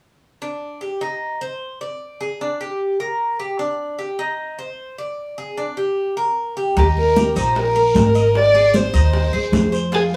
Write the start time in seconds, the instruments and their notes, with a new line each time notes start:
0.42 cuban tres D4
0.81 cuban tres G4
1.01 cuban tres D#4
1.41 cuban tres C5
1.81 cuban tres D5
2.21 cuban tres G#4
2.41 cuban tres D4
2.61 cuban tres G4
3.00 cuban tres A#4
3.39 cuban tres G4
3.59 cuban tres D4
3.99 cuban tres G4
4.19 cuban tres D#4
4.59 cuban tres C5
4.98 cuban tres D5
5.38 cuban tres G#4
5.57 cuban tres D4
5.77 cuban tres G4
6.17 cuban tres A#4
6.57 cuban tres G4
6.76 upright bass D#2, cuban tres D#4, violin G4, high bongo, high conga, long guiro
6.97 violin A#4, high conga
7.16 cuban tres G4, high bongo, high conga, short guiro
7.36 upright bass A#1, cuban tres D#4, violin C5, high conga, short guiro
7.55 violin A#4, high bongo, high conga, long guiro
7.76 cuban tres A#4, high conga
7.95 upright bass G#1, violin A#4, high bongo, low bongo, high conga, short guiro
8.15 cuban tres D#5, high conga, short guiro
8.34 violin D5, high bongo, high conga, long guiro
8.54 cuban tres G#4, high conga
8.74 cuban tres C5, violin C5, high bongo, high conga, short guiro
8.93 upright bass D#2, cuban tres D#4, high bongo, high conga, short guiro
9.13 high bongo, high conga, long guiro
9.33 upright bass D#2, cuban tres G#4, high bongo, high conga
9.52 upright bass F2, high bongo, low bongo, high conga, short guiro
9.72 cuban tres C5, high bongo, short guiro
9.92 cuban tres F4, violin G#4, high bongo, high conga, long guiro
10.12 high conga